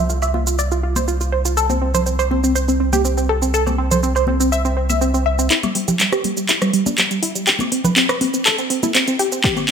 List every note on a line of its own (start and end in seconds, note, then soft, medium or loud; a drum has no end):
0.00 5.48 C2 medium
0.10 0.19 F4 medium
0.10 cabasa medium
0.22 0.31 E5 medium
0.22 cabasa soft
0.22 high woodblock medium
0.34 0.44 F4 medium
0.34 high conga medium
0.47 0.56 F4 medium
0.47 cabasa medium
0.59 0.68 D5 medium
0.59 cabasa medium
0.72 0.81 F4 medium
0.72 cabasa soft
0.83 0.93 F4 medium
0.96 1.05 C5 medium
0.96 high conga medium
0.96 cabasa medium
1.08 1.18 F4 medium
1.08 cabasa medium
1.21 1.30 F4 medium
1.21 cabasa soft
1.32 1.42 C5 medium
1.45 1.54 F4 medium
1.45 cabasa medium
1.57 1.67 A4 loud
1.57 cabasa medium
1.70 1.79 C4 medium
1.70 high conga medium
1.70 cabasa soft
1.82 1.91 C4 medium
1.94 2.03 C5 medium
1.94 low conga medium
1.94 cabasa medium
2.06 2.16 C4 medium
2.06 cabasa medium
2.19 2.28 C5 medium
2.19 cabasa soft
2.19 high woodblock medium
2.31 2.41 C4 medium
2.31 high conga medium
2.44 2.53 C4 medium
2.44 cabasa medium
2.55 2.65 C5 medium
2.55 cabasa medium
2.68 2.77 C4 medium
2.68 cabasa soft
2.80 2.90 C4 medium
2.93 3.02 G4 medium
2.93 high conga medium
2.93 cabasa medium
3.05 3.14 C4 medium
3.05 cabasa medium
3.17 3.26 C4 medium
3.17 cabasa soft
3.29 3.39 A4 medium
3.42 3.51 C4 medium
3.42 cabasa medium
3.54 3.64 A4 loud
3.54 cabasa medium
3.66 3.76 C4 medium
3.66 high conga medium
3.66 cabasa soft
3.66 high woodblock medium
3.78 3.88 C4 medium
3.91 4.00 C5 medium
3.91 low conga medium
3.91 cabasa medium
4.03 4.13 C4 medium
4.03 cabasa medium
4.15 4.25 C5 medium
4.15 cabasa soft
4.15 high woodblock medium
4.27 4.37 C4 medium
4.27 high conga medium
4.40 4.49 C4 medium
4.40 cabasa medium
4.52 4.62 E5 medium
4.52 cabasa medium
4.65 4.74 C4 medium
4.65 cabasa soft
4.77 4.87 C4 medium
4.90 4.99 E5 medium
4.90 high conga medium
4.90 cabasa medium
5.01 5.11 C4 medium
5.01 cabasa medium
5.14 5.23 C4 medium
5.14 cabasa soft
5.26 5.36 E5 medium
5.39 5.48 C4 medium
5.39 cabasa medium
5.50 5.60 E4 loud
5.50 clap soft
5.50 closed hi-hat medium
5.50 cabasa soft
5.63 5.72 G3 medium
5.63 closed hi-hat soft
5.63 high conga medium
5.63 cabasa soft
5.63 high woodblock medium
5.75 5.85 G3 medium
5.75 open hi-hat loud
5.88 5.97 G4 medium
5.88 closed hi-hat soft
5.88 low conga medium
5.88 cabasa medium
6.00 6.09 G3 medium
6.00 clap soft
6.00 closed hi-hat medium
6.00 cabasa medium
6.12 6.21 G4 medium
6.12 cross-stick medium
6.12 closed hi-hat soft
6.12 cabasa soft
6.24 6.34 G3 medium
6.24 open hi-hat loud
6.24 high conga medium
6.37 6.46 G3 medium
6.37 closed hi-hat soft
6.37 cabasa medium
6.49 6.59 E4 medium
6.49 clap medium
6.49 closed hi-hat medium
6.49 cabasa medium
6.62 6.71 G3 medium
6.62 cross-stick medium
6.62 closed hi-hat soft
6.62 cabasa soft
6.73 6.83 G3 medium
6.73 open hi-hat loud
6.86 6.95 D4 medium
6.86 closed hi-hat soft
6.86 high conga medium
6.86 cabasa medium
6.98 7.08 G3 medium
6.98 clap medium
6.98 closed hi-hat medium
6.98 cabasa medium
7.11 7.20 G3 medium
7.11 closed hi-hat soft
7.11 cabasa soft
7.23 7.32 E4 medium
7.23 open hi-hat loud
7.35 7.44 G3 medium
7.35 closed hi-hat soft
7.35 cabasa medium
7.47 7.57 G4 loud
7.47 clap medium
7.47 closed hi-hat medium
7.47 cabasa medium
7.59 7.69 C4 medium
7.59 closed hi-hat soft
7.59 high conga medium
7.59 cabasa soft
7.59 high woodblock medium
7.72 7.82 C4 medium
7.72 open hi-hat loud
7.84 7.94 B4 medium
7.84 closed hi-hat soft
7.84 low conga medium
7.84 cabasa medium
7.96 8.06 C4 medium
7.96 clap medium
7.96 closed hi-hat medium
7.96 cabasa medium
8.09 8.18 B4 loud
8.09 cross-stick medium
8.09 closed hi-hat soft
8.09 cabasa soft
8.09 high woodblock medium
8.21 8.31 C4 medium
8.21 open hi-hat loud
8.21 high conga medium
8.34 8.43 C4 medium
8.34 closed hi-hat soft
8.34 cabasa medium
8.46 8.55 A4 medium
8.46 clap medium
8.46 closed hi-hat medium
8.46 cabasa medium
8.58 8.67 C4 medium
8.58 closed hi-hat soft
8.58 cabasa soft
8.70 8.80 C4 medium
8.70 open hi-hat loud
8.83 8.92 E4 medium
8.83 closed hi-hat soft
8.83 high conga medium
8.83 cabasa medium
8.95 9.05 C4 medium
8.95 clap medium
8.95 closed hi-hat medium
8.95 cabasa medium
9.08 9.17 C4 medium
9.08 closed hi-hat soft
9.08 cabasa soft
9.19 9.29 G4 medium
9.19 open hi-hat loud
9.32 9.41 C4 medium
9.32 closed hi-hat soft
9.32 cabasa medium
9.44 9.54 G4 loud
9.44 kick loud
9.44 clap medium
9.44 closed hi-hat medium
9.44 cabasa medium
9.56 9.66 C4 medium
9.56 closed hi-hat soft
9.56 high conga medium
9.56 cabasa soft
9.56 high woodblock medium